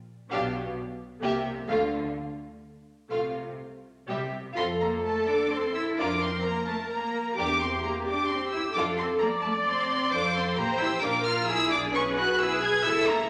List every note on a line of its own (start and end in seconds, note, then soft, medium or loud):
0.30 0.69 B1 medium
0.30 0.69 B2 medium
0.30 0.52 D4 medium
0.30 0.53 G4 medium
0.30 0.52 F5 medium
1.22 1.61 C2 medium
1.22 1.61 C3 medium
1.22 1.44 A#3 medium
1.22 1.44 G4 medium
1.22 1.45 E5 medium
1.68 2.07 D2 medium
1.68 2.07 D3 medium
1.68 1.90 A3 medium
1.68 1.91 F4 medium
1.68 1.90 F5 soft
3.09 3.51 C2 soft
3.09 3.51 C3 soft
3.09 3.33 A3 soft
3.09 3.34 F4 soft
3.09 3.33 F5 soft
4.08 4.49 C2 soft
4.08 4.49 C3 soft
4.08 4.31 G3 soft
4.08 4.31 G4 soft
4.08 4.32 E5 soft
4.56 4.97 F2 medium
4.56 4.64 C4 medium
4.56 4.79 F4 soft
4.56 5.93 A4 medium
4.56 4.79 A4 soft
4.56 4.65 C6 medium
4.80 5.04 A#3 medium
4.80 4.89 A#5 medium
5.04 5.28 A3 medium
5.04 5.28 A5 medium
5.28 5.51 D4 medium
5.28 5.52 D6 medium
5.51 5.74 C4 medium
5.51 5.75 C6 medium
5.75 5.97 E4 medium
5.75 5.83 E6 medium
5.97 6.37 F2 medium
5.97 6.21 D4 soft
5.97 6.20 F4 soft
5.97 7.35 A#4 medium
5.97 6.20 A#4 soft
5.97 6.21 D6 medium
6.21 6.45 C4 medium
6.21 6.45 C6 medium
6.44 6.68 A#3 medium
6.44 6.68 A#5 medium
6.68 6.76 A3 medium
6.68 6.91 A5 medium
6.91 7.37 A#3 medium
6.91 7.37 A#5 medium
7.38 7.77 E2 medium
7.38 7.46 D4 medium
7.38 8.73 G4 medium
7.38 7.60 G4 medium
7.38 7.60 A#4 soft
7.38 7.61 D6 medium
7.61 7.69 C4 soft
7.61 7.84 C6 medium
7.84 8.07 A#3 medium
7.84 7.92 A#5 medium
8.07 8.30 D4 medium
8.07 8.30 D6 medium
8.28 8.53 C4 medium
8.28 8.52 C6 medium
8.51 8.61 E4 medium
8.51 8.74 E6 medium
8.74 9.14 F2 medium
8.74 8.98 D4 medium
8.74 8.97 F4 medium
8.74 9.21 A4 medium
8.74 8.97 A4 medium
8.74 8.82 D6 medium
8.97 9.06 C4 medium
8.97 9.05 C6 medium
9.20 9.29 A#3 medium
9.20 10.13 D5 medium
9.20 9.28 A#5 medium
9.42 9.52 A3 medium
9.42 9.50 A5 medium
9.66 10.12 C4 medium
9.66 10.11 C6 medium
10.12 10.55 F2 medium
10.12 10.20 D4 medium
10.12 10.55 F4 medium
10.12 10.55 A4 medium
10.12 10.56 C5 medium
10.12 10.35 D6 medium
10.35 10.58 C4 medium
10.35 10.58 C6 medium
10.57 11.03 A1 medium
10.57 10.66 A#3 medium
10.57 11.02 G4 medium
10.57 11.02 C5 medium
10.57 11.03 C5 medium
10.57 10.81 A#5 medium
10.80 10.88 E4 medium
10.80 11.03 E6 medium
11.02 11.48 A#1 medium
11.02 11.11 D4 medium
11.02 11.49 F4 medium
11.02 11.48 A#4 medium
11.02 11.49 A#4 medium
11.02 11.26 D6 medium
11.25 11.48 F4 medium
11.25 11.48 F6 medium
11.47 12.85 B1 medium
11.47 11.71 E4 medium
11.47 11.92 G#4 medium
11.47 12.38 G#4 medium
11.47 11.71 E6 loud
11.71 11.94 D4 medium
11.71 11.80 D6 medium
11.92 12.17 C#4 medium
11.92 12.38 B4 medium
11.92 12.02 C#6 medium
12.16 12.40 F#4 medium
12.16 12.39 F#6 medium
12.37 12.63 E4 medium
12.37 12.84 G#4 medium
12.37 12.85 B4 medium
12.37 12.63 E6 medium
12.62 12.85 G#4 medium
12.62 12.85 G#6 medium
12.84 13.29 C#2 medium
12.84 13.09 E4 medium
12.84 13.29 A4 medium
12.84 13.28 A4 medium
12.84 13.29 E5 medium
12.84 13.08 E6 loud
13.08 13.29 A#3 medium
13.08 13.29 A#5 medium